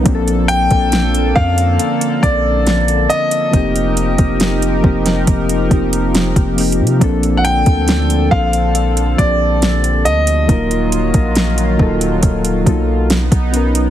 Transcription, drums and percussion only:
0.06 kick loud
0.06 closed hi-hat medium
0.28 closed hi-hat medium
0.49 closed hi-hat medium
0.71 kick medium
0.71 closed hi-hat soft
0.92 snare loud
0.92 closed hi-hat medium
1.15 closed hi-hat medium
1.36 kick loud
1.58 closed hi-hat medium
1.79 closed hi-hat medium
2.01 closed hi-hat medium
2.23 kick medium
2.23 closed hi-hat medium
2.67 snare loud
2.67 closed hi-hat medium
2.88 closed hi-hat medium
3.10 closed hi-hat medium
3.31 closed hi-hat medium
3.53 kick loud
3.53 closed hi-hat medium
3.76 closed hi-hat medium
3.97 closed hi-hat medium
4.18 kick medium
4.18 closed hi-hat soft
4.40 snare loud
4.40 closed hi-hat medium
4.62 closed hi-hat medium
4.84 kick medium
5.06 snare medium
5.06 closed hi-hat medium
5.27 kick medium
5.27 closed hi-hat medium
5.49 closed hi-hat medium
5.71 kick medium
5.71 closed hi-hat soft
5.93 closed hi-hat medium
6.15 snare loud
6.15 closed hi-hat medium
6.36 kick medium
6.36 closed hi-hat medium
6.58 closed hi-hat medium
6.58 open hi-hat medium
6.72 closed hi-hat medium
6.87 closed hi-hat soft
7.01 kick loud
7.01 closed hi-hat medium
7.23 closed hi-hat medium
7.45 closed hi-hat medium
7.66 kick medium
7.66 closed hi-hat medium
7.88 snare loud
7.88 closed hi-hat medium
8.10 closed hi-hat medium
8.32 kick medium
8.53 closed hi-hat medium
8.75 closed hi-hat medium
8.97 closed hi-hat medium
9.19 kick medium
9.19 closed hi-hat medium
9.62 snare loud
9.62 closed hi-hat medium
9.84 closed hi-hat medium
10.06 closed hi-hat medium
10.27 closed hi-hat medium
10.49 kick loud
10.49 closed hi-hat medium
10.71 closed hi-hat soft
10.92 closed hi-hat medium
11.14 kick medium
11.14 closed hi-hat medium
11.35 snare loud
11.35 closed hi-hat medium
11.58 closed hi-hat medium
11.79 kick loud
12.01 closed hi-hat medium
12.23 kick medium
12.23 closed hi-hat medium
12.45 closed hi-hat medium
12.66 kick medium
12.66 closed hi-hat medium
13.10 snare loud
13.10 closed hi-hat medium
13.32 kick medium
13.32 closed hi-hat medium
13.54 closed hi-hat medium
13.75 closed hi-hat medium

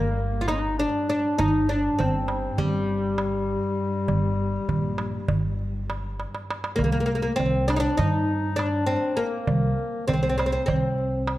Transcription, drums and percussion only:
0.19 darbuka ka soft
0.48 darbuka tek medium
0.94 darbuka ka soft
1.39 darbuka dum medium
2.00 darbuka dum medium
2.28 darbuka tek medium
2.58 darbuka dum medium
2.89 darbuka ka soft
3.18 darbuka tek medium
3.63 darbuka ka soft
4.08 darbuka dum medium
4.69 darbuka dum medium
4.98 darbuka tek medium
5.28 darbuka dum medium
5.59 darbuka ka soft
5.90 darbuka tek medium
6.20 darbuka tek soft
6.35 darbuka ka medium
6.51 darbuka tek medium
6.64 darbuka ka medium
6.79 darbuka dum medium
7.10 darbuka ka soft
7.40 darbuka dum medium
7.70 darbuka tek medium
7.99 darbuka dum medium
8.28 darbuka ka soft
8.59 darbuka tek medium
9.05 darbuka ka soft
9.47 darbuka dum medium
9.79 darbuka ka soft
10.09 darbuka dum medium
10.39 darbuka tek medium
10.68 darbuka dum medium
10.98 darbuka ka soft
11.27 darbuka tek medium

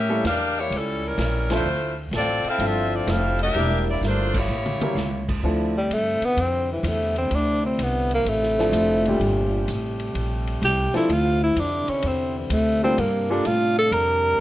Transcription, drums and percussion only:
0.25 snare medium
0.25 hi-hat pedal soft
0.25 ride medium
0.72 ride medium
1.18 snare medium
1.18 hi-hat pedal medium
1.18 ride medium
1.50 snare medium
1.50 ride medium
2.13 snare medium
2.13 hi-hat pedal medium
2.13 ride medium
2.45 ride soft
2.60 ride medium
3.08 snare medium
3.08 hi-hat pedal medium
3.08 ride medium
3.39 ride soft
3.54 ride medium
4.02 snare soft
4.02 hi-hat pedal medium
4.34 kick medium
4.34 crash medium
4.66 mid tom medium
4.81 mid tom medium
4.97 snare medium
4.97 hi-hat pedal medium
5.29 kick medium
5.29 crash medium
5.91 hi-hat pedal soft
5.91 ride medium
6.22 ride soft
6.37 ride medium
6.84 hi-hat pedal soft
6.84 ride medium
7.16 ride soft
7.31 ride medium
7.79 hi-hat pedal medium
7.79 ride medium
8.11 ride soft
8.26 ride medium
8.43 snare soft
8.59 snare soft
8.73 hi-hat pedal medium
8.73 ride medium
9.05 ride soft
9.21 ride medium
9.68 hi-hat pedal medium
9.68 ride medium
10.00 ride soft
10.15 ride medium
10.47 ride soft
10.62 hi-hat pedal medium
10.62 ride medium
10.94 snare soft
10.94 ride soft
11.10 ride medium
11.56 hi-hat pedal medium
11.56 ride medium
11.88 ride medium
12.03 ride medium
12.50 hi-hat pedal medium
12.50 ride medium
12.98 ride medium
13.45 hi-hat pedal medium
13.45 ride medium
13.92 ride medium

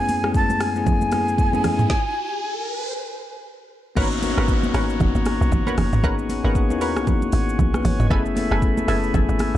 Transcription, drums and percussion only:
0.09 open hi-hat medium
0.09 high conga medium
0.09 shaker medium
0.24 cross-stick medium
0.34 kick medium
0.34 shaker medium
0.50 high conga medium
0.50 shaker medium
0.60 cross-stick loud
0.60 open hi-hat medium
0.60 shaker medium
0.76 shaker medium
0.86 kick loud
0.86 low conga medium
0.86 shaker medium
1.01 high conga medium
1.01 shaker soft
1.12 cross-stick medium
1.12 open hi-hat medium
1.12 high conga medium
1.12 shaker medium
1.28 shaker soft
1.38 kick loud
1.38 shaker medium
1.53 high conga medium
1.53 shaker medium
1.64 cross-stick medium
1.64 open hi-hat medium
1.64 low conga medium
1.64 shaker medium
1.79 mid tom loud
1.79 shaker medium
1.90 kick loud
1.90 snare medium
3.97 kick loud
3.97 crash loud
3.97 shaker medium
4.12 shaker medium
4.23 open hi-hat medium
4.23 high conga medium
4.23 shaker loud
4.38 cross-stick loud
4.48 kick medium
4.48 shaker medium
4.63 high conga medium
4.63 shaker medium
4.74 cross-stick loud
4.74 open hi-hat medium
4.74 shaker loud
4.90 shaker medium
5.00 kick loud
5.00 low conga medium
5.00 shaker medium
5.15 high conga medium
5.15 shaker soft
5.26 cross-stick medium
5.26 open hi-hat medium
5.26 high conga medium
5.26 shaker medium
5.42 shaker soft
5.52 kick loud
5.52 low conga medium
5.52 shaker medium
5.67 high conga medium
5.67 shaker medium
5.78 cross-stick loud
5.78 open hi-hat medium
5.78 high conga medium
5.78 low conga medium
5.78 shaker medium
5.93 mid tom loud
5.93 shaker medium
6.04 kick loud
6.04 shaker medium
6.19 shaker medium
6.29 open hi-hat medium
6.29 high conga medium
6.29 shaker loud
6.55 kick medium
6.55 shaker medium
6.70 high conga medium
6.70 shaker medium
6.81 open hi-hat medium
6.81 shaker medium
6.97 cross-stick loud
6.97 shaker medium
7.07 kick loud
7.07 low conga medium
7.07 shaker medium
7.22 high conga medium
7.22 shaker soft
7.32 open hi-hat medium
7.32 high conga medium
7.32 shaker medium
7.49 shaker soft
7.59 kick medium
7.59 low conga medium
7.59 shaker medium
7.74 cross-stick medium
7.74 high conga medium
7.74 shaker medium
7.85 open hi-hat medium
7.85 high conga medium
7.85 low conga medium
7.85 shaker medium
8.00 mid tom loud
8.00 shaker medium
8.11 kick loud
8.11 shaker medium
8.26 shaker medium
8.37 open hi-hat medium
8.37 high conga medium
8.37 shaker loud
8.52 cross-stick loud
8.62 kick medium
8.62 shaker medium
8.77 high conga medium
8.77 shaker medium
8.88 cross-stick loud
8.88 open hi-hat medium
8.88 shaker loud
9.03 shaker medium
9.14 kick loud
9.14 low conga medium
9.14 shaker medium
9.29 high conga medium
9.29 shaker soft
9.39 cross-stick medium
9.39 open hi-hat medium
9.39 high conga medium
9.39 shaker medium

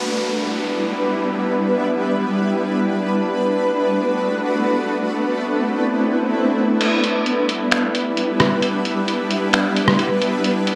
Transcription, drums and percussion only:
6.81 closed hi-hat medium
6.81 crash medium
7.04 closed hi-hat medium
7.26 closed hi-hat medium
7.49 closed hi-hat medium
7.71 finger snap loud
7.71 closed hi-hat medium
7.95 closed hi-hat medium
8.17 closed hi-hat medium
8.40 cross-stick medium
8.40 closed hi-hat medium
8.62 closed hi-hat medium
8.85 closed hi-hat medium
9.08 closed hi-hat medium
9.31 closed hi-hat medium
9.53 finger snap loud
9.53 closed hi-hat medium
9.76 closed hi-hat medium
9.88 cross-stick medium
9.99 closed hi-hat medium
10.22 closed hi-hat medium
10.44 closed hi-hat medium
10.67 closed hi-hat medium

